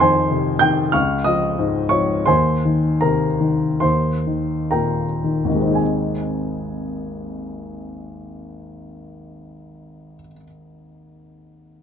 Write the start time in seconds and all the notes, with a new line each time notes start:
Already playing: F2
0.00 D#3 C5 G#5 C6
0.31 C3
0.59 D#3 G5 G6
0.92 C#2 F5 C#6 F6
1.24 F3 D#5 D#6
1.59 G#2
1.89 F3 C#5 C#6
2.26 D#2 C5 G#5 C6
2.65 D#3
3.01 C3 A#4 A#5
3.41 D#3
3.80 D#2 C5 C6
4.27 D#3
4.71 A#2 A#4 G5 A#5
5.24 D#3
5.44 G#1
5.50 D#2
5.55 G#3
5.61 C4
5.66 D#4
5.72 G#4 G#5